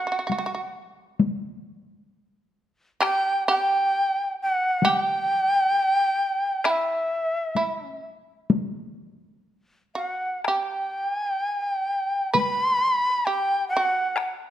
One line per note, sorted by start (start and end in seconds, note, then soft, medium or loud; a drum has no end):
0.00 0.74 F#5 loud
0.07 0.11 F#4 soft
0.12 0.17 F#4 medium
0.19 0.24 F#4 soft
0.27 0.31 F#4 medium
0.27 taiko high soft
0.32 0.37 F#4 soft
0.38 0.45 F#4 medium
0.46 0.53 F#4 medium
0.55 0.60 F#4 medium
1.19 taiko high medium
3.00 3.43 G4 medium
3.00 3.44 G5 loud
3.00 taiko rim medium
3.48 4.79 G4 medium
3.48 4.34 G5 loud
4.42 4.91 F#5 loud
4.83 6.62 G4 medium
4.83 taiko high medium
4.89 6.71 G5 loud
6.65 7.53 E4 medium
6.65 taiko rim medium
6.69 8.06 E5 medium
7.55 7.86 E4 medium
7.55 taiko high soft
7.86 8.00 C#4 medium
8.50 taiko high medium
9.95 10.41 F#4 medium
9.95 10.41 F#5 medium
10.44 12.32 G4 medium
10.44 11.10 G5 medium
10.44 taiko rim medium
11.10 11.28 G#5 medium
11.28 11.47 G5 medium
11.47 11.65 G#5 medium
11.65 12.30 G5 medium
12.32 13.22 B4 medium
12.32 13.27 B5 loud
12.32 taiko high medium
13.25 13.69 G4 medium
13.25 13.68 G5 loud
13.69 14.31 F#5 loud
13.77 14.34 F#4 medium
14.17 taiko rim medium